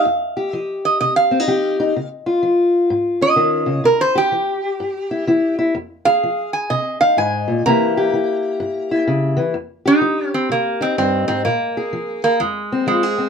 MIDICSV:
0, 0, Header, 1, 3, 480
1, 0, Start_track
1, 0, Key_signature, -4, "minor"
1, 0, Tempo, 475059
1, 56, Time_signature, 4, 2, 24, 8
1, 13429, End_track
2, 0, Start_track
2, 0, Title_t, "Resonator guitar played with a steel bar"
2, 0, Program_c, 0, 25
2, 0, Note_on_c, 0, 77, 100
2, 555, Note_off_c, 0, 77, 0
2, 555, Note_on_c, 0, 75, 100
2, 833, Note_off_c, 0, 75, 0
2, 860, Note_on_c, 0, 75, 87
2, 1003, Note_off_c, 0, 75, 0
2, 1015, Note_on_c, 0, 75, 82
2, 1170, Note_off_c, 0, 75, 0
2, 1174, Note_on_c, 0, 77, 92
2, 2104, Note_off_c, 0, 77, 0
2, 3257, Note_on_c, 0, 75, 97
2, 3875, Note_off_c, 0, 75, 0
2, 3893, Note_on_c, 0, 70, 87
2, 4047, Note_off_c, 0, 70, 0
2, 4052, Note_on_c, 0, 72, 99
2, 4207, Note_off_c, 0, 72, 0
2, 4219, Note_on_c, 0, 67, 96
2, 5613, Note_off_c, 0, 67, 0
2, 6116, Note_on_c, 0, 77, 106
2, 6582, Note_off_c, 0, 77, 0
2, 6600, Note_on_c, 0, 80, 77
2, 6764, Note_off_c, 0, 80, 0
2, 6770, Note_on_c, 0, 75, 83
2, 7068, Note_off_c, 0, 75, 0
2, 7079, Note_on_c, 0, 77, 101
2, 7243, Note_off_c, 0, 77, 0
2, 7255, Note_on_c, 0, 80, 95
2, 7716, Note_off_c, 0, 80, 0
2, 7738, Note_on_c, 0, 82, 107
2, 9131, Note_off_c, 0, 82, 0
2, 9977, Note_on_c, 0, 63, 102
2, 10447, Note_off_c, 0, 63, 0
2, 10451, Note_on_c, 0, 60, 83
2, 10619, Note_off_c, 0, 60, 0
2, 10626, Note_on_c, 0, 58, 86
2, 10934, Note_on_c, 0, 60, 97
2, 10935, Note_off_c, 0, 58, 0
2, 11085, Note_off_c, 0, 60, 0
2, 11097, Note_on_c, 0, 60, 96
2, 11383, Note_off_c, 0, 60, 0
2, 11395, Note_on_c, 0, 60, 87
2, 11563, Note_off_c, 0, 60, 0
2, 11567, Note_on_c, 0, 58, 79
2, 12354, Note_off_c, 0, 58, 0
2, 12366, Note_on_c, 0, 58, 84
2, 12522, Note_off_c, 0, 58, 0
2, 12528, Note_on_c, 0, 56, 81
2, 12998, Note_off_c, 0, 56, 0
2, 13010, Note_on_c, 0, 56, 78
2, 13429, Note_off_c, 0, 56, 0
2, 13429, End_track
3, 0, Start_track
3, 0, Title_t, "Steel-string acoustic guitar"
3, 0, Program_c, 1, 25
3, 53, Note_on_c, 1, 41, 71
3, 371, Note_on_c, 1, 67, 65
3, 500, Note_off_c, 1, 41, 0
3, 537, Note_on_c, 1, 53, 67
3, 982, Note_off_c, 1, 53, 0
3, 1019, Note_on_c, 1, 48, 72
3, 1325, Note_on_c, 1, 60, 62
3, 1411, Note_off_c, 1, 60, 0
3, 1411, Note_on_c, 1, 63, 48
3, 1462, Note_off_c, 1, 48, 0
3, 1486, Note_off_c, 1, 67, 0
3, 1491, Note_on_c, 1, 53, 66
3, 1498, Note_on_c, 1, 67, 73
3, 1804, Note_off_c, 1, 63, 0
3, 1816, Note_on_c, 1, 63, 67
3, 1938, Note_off_c, 1, 53, 0
3, 1955, Note_off_c, 1, 67, 0
3, 1960, Note_off_c, 1, 63, 0
3, 1985, Note_on_c, 1, 49, 68
3, 2287, Note_on_c, 1, 65, 62
3, 2425, Note_off_c, 1, 49, 0
3, 2451, Note_on_c, 1, 53, 61
3, 2898, Note_off_c, 1, 53, 0
3, 2932, Note_on_c, 1, 44, 71
3, 3247, Note_on_c, 1, 61, 62
3, 3378, Note_off_c, 1, 44, 0
3, 3397, Note_on_c, 1, 51, 71
3, 3700, Note_on_c, 1, 49, 66
3, 3714, Note_off_c, 1, 51, 0
3, 3874, Note_off_c, 1, 49, 0
3, 3874, Note_off_c, 1, 61, 0
3, 3878, Note_on_c, 1, 48, 69
3, 3894, Note_off_c, 1, 65, 0
3, 4196, Note_on_c, 1, 67, 72
3, 4330, Note_off_c, 1, 48, 0
3, 4363, Note_on_c, 1, 52, 58
3, 4812, Note_off_c, 1, 52, 0
3, 4850, Note_on_c, 1, 43, 73
3, 5163, Note_on_c, 1, 64, 59
3, 5295, Note_off_c, 1, 43, 0
3, 5324, Note_off_c, 1, 64, 0
3, 5329, Note_on_c, 1, 52, 76
3, 5336, Note_on_c, 1, 64, 62
3, 5632, Note_off_c, 1, 64, 0
3, 5644, Note_on_c, 1, 64, 65
3, 5774, Note_off_c, 1, 52, 0
3, 5791, Note_off_c, 1, 64, 0
3, 5806, Note_on_c, 1, 41, 76
3, 5836, Note_off_c, 1, 67, 0
3, 6124, Note_on_c, 1, 68, 68
3, 6252, Note_off_c, 1, 41, 0
3, 6299, Note_on_c, 1, 53, 62
3, 6739, Note_off_c, 1, 53, 0
3, 6773, Note_on_c, 1, 48, 69
3, 7081, Note_on_c, 1, 63, 68
3, 7215, Note_off_c, 1, 48, 0
3, 7246, Note_on_c, 1, 44, 69
3, 7555, Note_off_c, 1, 44, 0
3, 7556, Note_on_c, 1, 46, 68
3, 7708, Note_off_c, 1, 63, 0
3, 7709, Note_off_c, 1, 68, 0
3, 7726, Note_off_c, 1, 46, 0
3, 7739, Note_on_c, 1, 48, 75
3, 7743, Note_on_c, 1, 52, 66
3, 7751, Note_on_c, 1, 58, 65
3, 7758, Note_on_c, 1, 64, 61
3, 7766, Note_on_c, 1, 67, 71
3, 8044, Note_off_c, 1, 67, 0
3, 8056, Note_on_c, 1, 67, 75
3, 8178, Note_off_c, 1, 48, 0
3, 8207, Note_off_c, 1, 52, 0
3, 8219, Note_on_c, 1, 52, 66
3, 8658, Note_off_c, 1, 52, 0
3, 8689, Note_on_c, 1, 43, 79
3, 8994, Note_off_c, 1, 64, 0
3, 9006, Note_on_c, 1, 64, 67
3, 9133, Note_off_c, 1, 43, 0
3, 9169, Note_on_c, 1, 49, 69
3, 9464, Note_on_c, 1, 52, 69
3, 9476, Note_off_c, 1, 49, 0
3, 9631, Note_off_c, 1, 64, 0
3, 9636, Note_off_c, 1, 67, 0
3, 9638, Note_off_c, 1, 58, 0
3, 9638, Note_on_c, 1, 41, 70
3, 9640, Note_off_c, 1, 52, 0
3, 9957, Note_on_c, 1, 67, 63
3, 10088, Note_off_c, 1, 41, 0
3, 10117, Note_on_c, 1, 53, 67
3, 10567, Note_off_c, 1, 53, 0
3, 10602, Note_on_c, 1, 48, 65
3, 10919, Note_on_c, 1, 63, 62
3, 11051, Note_off_c, 1, 48, 0
3, 11094, Note_on_c, 1, 43, 66
3, 11395, Note_off_c, 1, 43, 0
3, 11399, Note_on_c, 1, 44, 70
3, 11548, Note_off_c, 1, 67, 0
3, 11549, Note_off_c, 1, 63, 0
3, 11569, Note_off_c, 1, 44, 0
3, 11577, Note_on_c, 1, 46, 70
3, 11894, Note_on_c, 1, 68, 59
3, 12019, Note_off_c, 1, 46, 0
3, 12051, Note_on_c, 1, 53, 66
3, 12497, Note_off_c, 1, 53, 0
3, 12539, Note_on_c, 1, 41, 74
3, 12856, Note_on_c, 1, 60, 63
3, 12981, Note_off_c, 1, 41, 0
3, 13002, Note_on_c, 1, 53, 65
3, 13005, Note_off_c, 1, 68, 0
3, 13009, Note_on_c, 1, 65, 71
3, 13165, Note_off_c, 1, 65, 0
3, 13165, Note_on_c, 1, 68, 56
3, 13316, Note_off_c, 1, 60, 0
3, 13320, Note_on_c, 1, 60, 55
3, 13429, Note_off_c, 1, 53, 0
3, 13429, Note_off_c, 1, 60, 0
3, 13429, Note_off_c, 1, 68, 0
3, 13429, End_track
0, 0, End_of_file